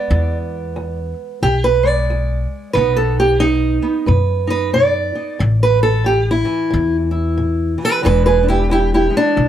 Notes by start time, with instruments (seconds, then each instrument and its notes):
Already playing: steel-string acoustic guitar G#3 B3 D5
0.11 upright bass E2, steel-string acoustic guitar E2
0.76 steel-string acoustic guitar E2
1.42 upright bass B1, steel-string acoustic guitar E2 G4
1.64 steel-string acoustic guitar B4
1.83 steel-string acoustic guitar G#3
1.87 steel-string acoustic guitar D5
2.10 steel-string acoustic guitar E2
2.73 upright bass B1, steel-string acoustic guitar B2 B3 B4
2.78 steel-string acoustic guitar D#4
2.96 steel-string acoustic guitar A4
3.20 steel-string acoustic guitar G4
3.40 steel-string acoustic guitar B2 D#4
3.82 steel-string acoustic guitar B3
4.06 upright bass F#2, steel-string acoustic guitar B2 B4
4.47 steel-string acoustic guitar D#4 B4
4.73 steel-string acoustic guitar B2 D5
5.15 steel-string acoustic guitar D#4
5.39 upright bass A1, steel-string acoustic guitar A2
5.63 steel-string acoustic guitar B4
5.83 steel-string acoustic guitar A4
6.04 steel-string acoustic guitar A2 G4
6.31 steel-string acoustic guitar E4
6.45 steel-string acoustic guitar E3
6.70 upright bass E2, steel-string acoustic guitar A2
7.11 steel-string acoustic guitar E4
7.37 steel-string acoustic guitar A2
7.78 steel-string acoustic guitar E3
7.84 steel-string acoustic guitar G4 B4
8.02 upright bass E1, steel-string acoustic guitar E2 E3 G#3 D4 B4
8.26 steel-string acoustic guitar G#4 B4
8.43 steel-string acoustic guitar D4
8.48 steel-string acoustic guitar E4 G4
8.70 steel-string acoustic guitar E2 E4 G4
8.94 steel-string acoustic guitar E4 G4
9.10 steel-string acoustic guitar G#3
9.17 steel-string acoustic guitar D4
9.36 upright bass B1, steel-string acoustic guitar E2